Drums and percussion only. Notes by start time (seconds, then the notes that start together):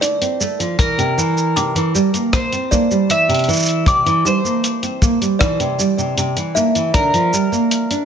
0.02 closed hi-hat, shaker
0.22 closed hi-hat, shaker
0.41 shaker
0.60 closed hi-hat, shaker
0.79 kick, closed hi-hat, shaker
0.99 closed hi-hat, shaker
1.19 shaker
1.38 shaker
1.57 closed hi-hat, shaker
1.76 closed hi-hat, shaker
1.95 shaker
2.14 closed hi-hat, shaker
2.33 kick, cross-stick, closed hi-hat, shaker
2.52 closed hi-hat, shaker
2.72 kick, shaker
2.91 shaker
3.10 closed hi-hat, shaker
3.30 closed hi-hat, shaker
3.34 closed hi-hat
3.39 closed hi-hat
3.44 closed hi-hat
3.49 closed hi-hat, shaker
3.53 closed hi-hat, shaker
3.56 closed hi-hat, shaker
3.59 shaker
3.62 closed hi-hat, shaker
3.65 closed hi-hat, shaker
3.69 shaker
3.86 kick, closed hi-hat, shaker
4.07 closed hi-hat, shaker
4.26 shaker
4.46 shaker
4.64 closed hi-hat, shaker
4.83 closed hi-hat, shaker
5.02 kick, shaker
5.22 closed hi-hat, shaker
5.41 kick, cross-stick, closed hi-hat, shaker
5.60 closed hi-hat, shaker
5.79 shaker
5.99 shaker
6.18 closed hi-hat, shaker
6.37 closed hi-hat, shaker
6.57 shaker
6.75 closed hi-hat, shaker
6.94 kick, closed hi-hat, shaker
7.14 closed hi-hat, shaker
7.34 shaker
7.53 shaker
7.71 closed hi-hat, shaker
7.91 closed hi-hat, shaker